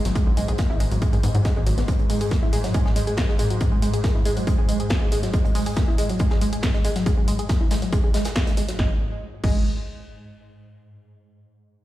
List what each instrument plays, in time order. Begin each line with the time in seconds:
Already playing: synth drone G#2
0.05 analog synth bass G#1, synth arpeggio sound F#3, snare, closed hi-hat
0.15 synth arpeggio sound G#3, kick, closed hi-hat
0.27 analog synth bass B1, synth arpeggio sound G#3
0.37 analog synth bass B1, synth arpeggio sound G#3, closed hi-hat, open hi-hat
0.48 analog synth bass B1, synth arpeggio sound G#4, closed hi-hat
0.58 synth arpeggio sound A#3, kick, snare, closed hi-hat
0.70 analog synth bass G#1, synth arpeggio sound E4
0.80 analog synth bass G#1, synth arpeggio sound G#3, closed hi-hat, open hi-hat
0.91 analog synth bass G#1, synth arpeggio sound F#3, closed hi-hat, open hi-hat
1.02 synth arpeggio sound G#3, kick, closed hi-hat
1.13 analog synth bass G#2, synth arpeggio sound G#4, open hi-hat
1.23 analog synth bass G#2, synth arpeggio sound B3, closed hi-hat, open hi-hat
1.35 analog synth bass G#2, synth arpeggio sound F#3, closed hi-hat
1.45 synth arpeggio sound G#3, kick, snare, closed hi-hat
1.56 analog synth bass G#1, synth arpeggio sound G#3
1.67 analog synth bass G#1, synth arpeggio sound F#3, closed hi-hat, open hi-hat
1.78 analog synth bass G#1, synth arpeggio sound B3, snare, closed hi-hat
1.88 synth arpeggio sound G#3, kick, closed hi-hat
1.99 synth arpeggio sound G#3, closed hi-hat
2.10 synth arpeggio sound G#3, open hi-hat
2.21 synth arpeggio sound G#4, closed hi-hat
2.31 synth arpeggio sound A#3, kick, snare, closed hi-hat
2.42 synth arpeggio sound E4
2.53 synth arpeggio sound G#3, closed hi-hat, open hi-hat
2.64 synth arpeggio sound F#3, snare, open hi-hat
2.74 synth arpeggio sound G#3, kick, closed hi-hat
2.86 synth arpeggio sound G#4, snare
2.96 synth arpeggio sound G#3, closed hi-hat, open hi-hat
3.07 synth arpeggio sound G#4, closed hi-hat
3.17 synth arpeggio sound A#3, kick, snare, closed hi-hat
3.29 synth arpeggio sound G#3, snare
3.39 synth arpeggio sound G#3, closed hi-hat, open hi-hat
3.50 synth arpeggio sound F#3, closed hi-hat
3.61 synth arpeggio sound G#3, kick, closed hi-hat
3.72 synth arpeggio sound G#3
3.82 synth arpeggio sound G#3, closed hi-hat, open hi-hat
3.94 synth arpeggio sound G#4, closed hi-hat
4.04 synth arpeggio sound A#3, kick, snare, closed hi-hat
4.15 synth arpeggio sound E4
4.25 synth arpeggio sound G#3, closed hi-hat, open hi-hat
4.37 synth arpeggio sound F#3, closed hi-hat, open hi-hat
4.47 synth arpeggio sound G#3, kick, closed hi-hat
4.58 synth arpeggio sound G#4
4.69 synth arpeggio sound G#3, closed hi-hat, open hi-hat
4.80 synth arpeggio sound G#4, closed hi-hat
4.90 synth arpeggio sound A#3, kick, snare, closed hi-hat
5.02 synth arpeggio sound G#3
5.12 synth arpeggio sound G#3, closed hi-hat, open hi-hat
5.22 synth arpeggio sound F#3, snare, closed hi-hat
5.34 synth arpeggio sound G#3, kick, closed hi-hat
5.45 synth arpeggio sound G#3, closed hi-hat
5.55 synth arpeggio sound G#3, open hi-hat
5.66 synth arpeggio sound G#4, closed hi-hat
5.77 synth arpeggio sound A#3, kick, snare, closed hi-hat
5.88 synth arpeggio sound E4
5.98 synth arpeggio sound G#3, closed hi-hat, open hi-hat
6.09 synth arpeggio sound F#3, open hi-hat
6.19 synth arpeggio sound G#3, kick, closed hi-hat
6.30 synth arpeggio sound G#4, snare
6.41 synth arpeggio sound G#3, closed hi-hat, open hi-hat
6.53 synth arpeggio sound G#4, closed hi-hat
6.63 synth arpeggio sound A#3, kick, snare, closed hi-hat
6.74 synth arpeggio sound G#3, snare
6.85 synth arpeggio sound G#3, closed hi-hat, open hi-hat
6.96 synth arpeggio sound F#3, snare, closed hi-hat
7.06 synth arpeggio sound G#3, kick, closed hi-hat
7.17 synth arpeggio sound G#3
7.28 synth arpeggio sound G#3, closed hi-hat, open hi-hat
7.39 synth arpeggio sound G#4, closed hi-hat
7.49 synth arpeggio sound A#3, kick, snare, closed hi-hat
7.61 synth arpeggio sound E4
7.71 synth arpeggio sound G#3, snare, closed hi-hat, open hi-hat
7.82 synth arpeggio sound F#3, open hi-hat
7.93 synth arpeggio sound G#3, kick, closed hi-hat
8.04 synth arpeggio sound G#4
8.14 synth arpeggio sound G#3, snare, closed hi-hat, open hi-hat
8.25 synth arpeggio sound G#4, snare, closed hi-hat
8.35 synth arpeggio sound A#3, kick, snare, closed hi-hat
8.46 synth arpeggio sound G#3, snare, closed hi-hat
8.57 synth arpeggio sound G#3, closed hi-hat, open hi-hat
8.69 synth arpeggio sound F#3, snare, closed hi-hat
8.79 analog synth bass G#1, synth arpeggio sound G#3, kick, snare
9.44 analog synth bass G#1, synth arpeggio sound G#3, kick, crash